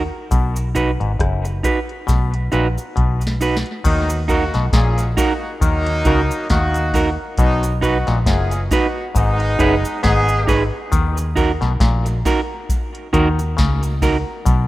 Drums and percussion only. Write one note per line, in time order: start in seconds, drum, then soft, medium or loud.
0.31 kick loud
0.31 closed hi-hat medium
0.31 cabasa medium
0.56 closed hi-hat medium
0.56 cabasa medium
0.75 kick medium
0.75 closed hi-hat medium
0.75 cabasa medium
1.01 closed hi-hat soft
1.19 kick loud
1.19 cross-stick loud
1.19 closed hi-hat medium
1.45 closed hi-hat medium
1.45 cabasa soft
1.64 kick loud
1.64 closed hi-hat medium
1.64 cabasa medium
1.89 closed hi-hat soft
2.08 kick loud
2.08 snare medium
2.08 closed hi-hat medium
2.08 cabasa medium
2.34 closed hi-hat medium
2.52 closed hi-hat medium
2.52 cabasa soft
2.78 closed hi-hat soft
2.78 cabasa medium
2.97 kick loud
2.97 closed hi-hat medium
3.21 closed hi-hat medium
3.21 cabasa medium
3.27 snare medium
3.41 open hi-hat medium
3.41 cabasa medium
3.57 snare medium
3.66 closed hi-hat soft
3.85 kick loud
3.85 closed hi-hat loud
3.85 crash loud
3.85 cabasa medium
4.10 closed hi-hat medium
4.10 cabasa medium
4.29 kick medium
4.29 open hi-hat medium
4.29 cabasa medium
4.54 snare medium
4.54 closed hi-hat soft
4.73 kick loud
4.73 snare loud
4.73 closed hi-hat loud
4.98 closed hi-hat medium
4.98 cabasa medium
5.17 kick medium
5.17 open hi-hat medium
5.17 cabasa medium
5.61 kick loud
5.61 closed hi-hat medium
5.61 cabasa medium
5.86 closed hi-hat medium
6.05 kick loud
6.05 closed hi-hat medium
6.05 cabasa soft
6.31 closed hi-hat soft
6.31 cabasa medium
6.50 kick loud
6.50 snare loud
6.50 closed hi-hat medium
6.74 closed hi-hat medium
6.74 cabasa medium
6.93 kick medium
6.93 open hi-hat medium
6.93 cabasa medium
7.38 kick loud
7.38 closed hi-hat loud
7.38 cabasa medium
7.63 closed hi-hat medium
7.63 cabasa medium
7.82 kick loud
7.82 open hi-hat medium
7.82 cabasa medium
8.07 snare medium
8.07 closed hi-hat soft
8.26 kick loud
8.26 snare loud
8.26 closed hi-hat loud
8.51 closed hi-hat medium
8.51 cabasa medium
8.71 kick loud
8.71 open hi-hat medium
8.71 cabasa medium
9.15 kick loud
9.15 closed hi-hat medium
9.15 cabasa medium
9.40 closed hi-hat medium
9.59 kick medium
9.59 closed hi-hat medium
9.59 cabasa soft
9.85 closed hi-hat soft
9.85 cabasa medium
10.04 kick loud
10.04 snare loud
10.04 closed hi-hat medium
10.28 closed hi-hat medium
10.28 cabasa medium
10.48 kick loud
10.48 open hi-hat medium
10.48 cabasa medium
10.92 kick loud
10.92 closed hi-hat loud
10.92 cabasa medium
11.17 closed hi-hat medium
11.17 cabasa medium
11.37 kick medium
11.37 open hi-hat medium
11.37 cabasa medium
11.62 snare medium
11.62 closed hi-hat soft
11.80 kick loud
11.80 snare loud
11.80 closed hi-hat medium
12.06 closed hi-hat medium
12.06 cabasa soft
12.25 kick loud
12.25 open hi-hat medium
12.25 cabasa medium
12.69 kick loud
12.69 closed hi-hat medium
12.69 cabasa medium
12.95 closed hi-hat medium
13.14 kick loud
13.14 closed hi-hat medium
13.14 cabasa soft
13.39 closed hi-hat soft
13.39 cabasa medium
13.58 kick loud
13.58 snare loud
13.58 closed hi-hat medium
13.83 closed hi-hat medium
13.83 cabasa medium
14.02 kick medium
14.02 open hi-hat medium
14.02 cabasa medium
14.46 kick loud
14.46 closed hi-hat loud
14.46 cabasa medium